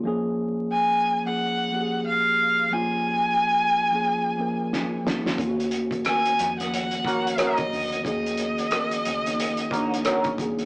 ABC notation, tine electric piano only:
X:1
M:4/4
L:1/16
Q:"Swing 16ths" 1/4=90
K:Ebm
V:1 name="Tine electric piano"
[F,B,DA]6 z [F,B,DA]3 [F,B,D=GA]4- [F,B,DGA] z | [F,B,DF]6 z [F,B,DA]3 [F,B,DB]3 z [F,B,DE]2 | [E,B,DFG]6 z [E,F,B,D]3 [E,B,DG]4- [E,B,DG] z | [E,B,DA]6 z [E,B,DE]3 [E,B,D=DE]3 z [E,B,_DA]2 |]